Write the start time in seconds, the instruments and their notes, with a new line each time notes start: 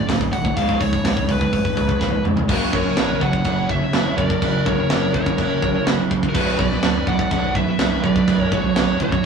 0.07 picked electric bass B0, distorted electric guitar D2 A2, kick, snare, open hi-hat
0.20 distorted electric guitar D2 A2, kick
0.33 picked electric bass B0, distorted electric guitar D2 A2, lead electric guitar F#5, kick, open hi-hat
0.45 distorted electric guitar D2 A2, kick
0.57 picked electric bass C#1, distorted electric guitar C#2 G#2 C#3, lead electric guitar F5, kick, open hi-hat
0.69 kick
0.80 picked electric bass C#1, distorted electric guitar C#2 G#2, lead electric guitar C#5, kick, open hi-hat
0.93 distorted electric guitar C#2 G#2, kick
1.05 picked electric bass C#1, distorted electric guitar C#2 G#2, kick, snare, open hi-hat
1.17 kick
1.28 picked electric bass C#1, distorted electric guitar C#2 G#2, lead electric guitar B4, kick, open hi-hat
1.41 distorted electric guitar C#2 G#2, kick
1.53 picked electric bass F1, distorted electric guitar C#2 G#2, kick, open hi-hat
1.65 kick
1.77 distorted electric guitar C#2 G#2, picked electric bass C#2, kick, open hi-hat
1.87 distorted electric guitar C#2 G#2, kick
1.99 picked electric bass C#1, distorted electric guitar C#2 G#2, kick, snare
2.13 distorted electric guitar C#2 G#2
2.24 picked electric bass F1, distorted electric guitar C#2 G#2, mid tom
2.36 distorted electric guitar C#2 G#2, floor tom
2.48 picked electric bass F#1, distorted electric guitar F#2 C#3 F#3, lead electric guitar F#4, kick, crash, china
2.54 lead electric guitar A#4
2.73 picked electric bass F#2, distorted electric guitar F#2 C#3, lead electric guitar A#4 C#5, kick
2.85 distorted electric guitar F#2 C#3
2.96 picked electric bass A#1, distorted electric guitar F#2 C#3, snare, china
3.20 picked electric bass F#1, distorted electric guitar F#2 C#3, lead electric guitar C#5 F#5, kick
3.33 distorted electric guitar F#2 C#3, kick
3.44 picked electric bass F#1, distorted electric guitar F#2 C#3, kick, china
3.69 distorted electric guitar F#2 C#3, lead electric guitar C#5 E5, kick
3.81 distorted electric guitar F#2 C#3
3.93 picked electric bass F#1, distorted electric guitar F#2 C#3, snare, china
4.08 distorted electric guitar F#2 C#3
4.17 picked electric bass F#2, distorted electric guitar F#2 C#3, lead electric guitar A#4 D5, kick
4.30 distorted electric guitar F#2 C#3, kick
4.42 picked electric bass F#1, distorted electric guitar F#2 C#3, kick, china
4.66 picked electric bass F#1, distorted electric guitar F#2 C#3, lead electric guitar A#4 C#5, kick
4.79 distorted electric guitar F#2 C#3
4.90 picked electric bass F#1, distorted electric guitar F#2 C#3, snare, china
5.14 picked electric bass F#1, distorted electric guitar F#2 C#3, lead electric guitar A#4 C#5, kick
5.26 distorted electric guitar F#2 C#3, kick
5.38 picked electric bass F#1, distorted electric guitar F#2 C#3, kick, china
5.62 picked electric bass F#1, distorted electric guitar F#2 C#3, kick
5.75 distorted electric guitar F#2 C#3
5.87 picked electric bass F#1, distorted electric guitar F#2 C#3, snare, china
6.00 distorted electric guitar F#2 C#3
6.11 distorted electric guitar F#2 C#3, kick
6.23 distorted electric guitar F#2 C#3, kick
6.29 lead electric guitar F#4 A#4
6.34 picked electric bass B0, distorted electric guitar B1 F#2 B2, lead electric guitar F#4 B4, kick, crash, china
6.58 picked electric bass B1, distorted electric guitar B1 F#2, lead electric guitar B4 D5, kick
6.73 distorted electric guitar B1 F#2
6.83 picked electric bass D1, distorted electric guitar B1 F#2, snare, china
7.07 picked electric bass B0, distorted electric guitar B1 F#2, lead electric guitar D5 F#5, kick
7.19 distorted electric guitar B1 F#2, kick
7.31 picked electric bass B0, distorted electric guitar B1 F#2, kick, china
7.55 distorted electric guitar B1 F#2, lead electric guitar B4 E5, kick
7.69 distorted electric guitar B1 F#2
7.79 picked electric bass B0, distorted electric guitar B1 F#2, snare, china
7.92 distorted electric guitar B1 F#2
8.04 picked electric bass B1, distorted electric guitar B1 F#2, lead electric guitar B4 D5, kick
8.16 distorted electric guitar B1 F#2, kick
8.28 picked electric bass B0, distorted electric guitar B1 F#2, kick, china
8.37 lead electric guitar A#4 C#5
8.52 picked electric bass B0, distorted electric guitar B1 F#2, lead electric guitar F#4 C#5, kick
8.65 distorted electric guitar B1 F#2
8.75 picked electric bass B0, distorted electric guitar B1 F#2, snare, china
9.00 picked electric bass B0, distorted electric guitar B1 F#2, lead electric guitar F#4 C#5, kick
9.12 distorted electric guitar B1 F#2, kick